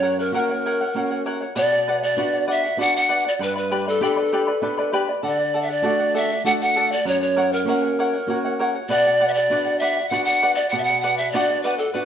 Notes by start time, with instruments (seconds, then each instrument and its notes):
Already playing: nylon-string guitar F#2, pan flute C#5
0.02 charango A#4 C#5 F#5
0.19 pan flute A#4, charango C#5 F#5
0.32 nylon-string guitar A#3 C#4 F#4, charango A#4 C#5 F#5, pan flute A#4
0.49 charango C#5 F#5
0.66 charango A#4 C#5 F#5
0.81 charango C#5 F#5
0.94 nylon-string guitar A#3 C#4 F#4, charango A#4 C#5 F#5
1.11 charango C#5 F#5
1.26 charango A#4 C#5 F#5
1.41 charango C#5 F#5
1.55 nylon-string guitar B2, charango B4 D5 F#5, pan flute D5
1.72 charango D5 F#5
1.88 charango B4 D5 F#5
2.03 pan flute D5, charango D5 F#5
2.17 nylon-string guitar B3 D4 F#4, charango B4 D5 F#5
2.34 charango D5 F#5
2.48 charango B4 D5 F#5, pan flute E5
2.63 charango D5 F#5
2.77 nylon-string guitar B3 D4 F#4, charango B4 D5 F#5, pan flute F#5
2.94 charango D5 F#5, pan flute F#5
3.09 charango B4 D5 F#5
3.25 charango D5 F#5, pan flute D5
3.39 nylon-string guitar G2, charango B4 D5 G5 B5, pan flute B4
3.56 charango B4 D5 B5, pan flute B4
3.71 charango G4 B4 D5 G5 B5
3.87 pan flute A4, charango B4 D5 B5
4.00 nylon-string guitar B3 D4 G4, charango G4 B4 D5 G5 B5, pan flute A4
4.16 charango B4 D5 B5
4.33 charango G4 B4 D5 G5 B5
4.47 charango B4 D5 B5
4.62 nylon-string guitar B3 D4 G4, charango B4 D5 G5 B5
4.78 charango B4 D5 B5
4.93 charango G4 B4 D5 G5 B5
5.07 charango B4 D5 B5
5.23 nylon-string guitar D3, charango A4 D5 F#5, pan flute D5
5.38 charango D5 F#5
5.54 charango A4 D5 F#5
5.62 pan flute E5
5.68 charango D5 F#5, pan flute D5
5.82 nylon-string guitar A3 D4 F#4, charango A4 D5 F#5
5.99 charango D5 F#5
6.15 charango A4 D5 F#5, pan flute E5
6.30 charango D5 F#5
6.44 nylon-string guitar A3 D4 F#4, charango A4 D5 F#5, pan flute F#5
6.61 charango D5 F#5, pan flute F#5
6.76 charango A4 D5 F#5
6.90 charango D5 F#5, pan flute D5
7.05 nylon-string guitar F#2, charango A#4 C#5 F#5, pan flute C#5
7.21 pan flute C#5, charango C#5 F#5
7.36 charango A#4 C#5 F#5
7.52 pan flute A#4, charango C#5 F#5
7.65 nylon-string guitar A#3 C#4 F#4, pan flute A#4, charango A#4
7.69 charango C#5 F#5
7.83 charango C#5 F#5
7.99 charango A#4 C#5 F#5
8.14 charango C#5 F#5
8.27 nylon-string guitar A#3 C#4 F#4, charango A#4 C#5 F#5
8.45 charango C#5 F#5
8.59 charango A#4 C#5 F#5
8.75 charango C#5 F#5
8.89 nylon-string guitar B2, charango B4 D5 F#5, pan flute D5
9.06 charango D5 F#5
9.20 charango B4 D5 F#5
9.28 pan flute E5
9.34 pan flute D5, charango F#5
9.38 charango D5
9.50 nylon-string guitar B3 D4 F#4, charango B4 D5 F#5
9.65 charango D5 F#5
9.79 charango B4 D5 F#5, pan flute E5
9.97 charango D5 F#5
10.09 nylon-string guitar B3 D4 F#4, charango B4 D5, pan flute F#5
10.13 charango F#5
10.24 pan flute F#5, charango F#5
10.29 charango D5
10.43 charango B4 D5 F#5
10.55 pan flute D5, charango D5 F#5
10.69 nylon-string guitar B2, charango B4 D5, pan flute F#5
10.74 charango F#5
10.79 pan flute E5
10.84 pan flute F#5
10.88 charango D5 F#5
11.01 charango B4 D5 F#5, pan flute F#5
11.17 charango D5 F#5, pan flute E5
11.32 nylon-string guitar B3 D4 F#4, charango B4 D5, pan flute D5
11.36 charango F#5
11.49 charango D5 F#5
11.63 pan flute B4, charango B4 D5 F#5
11.78 pan flute A4, charango D5 F#5
11.93 nylon-string guitar B3 D4 F#4, pan flute B4, charango B4 D5 F#5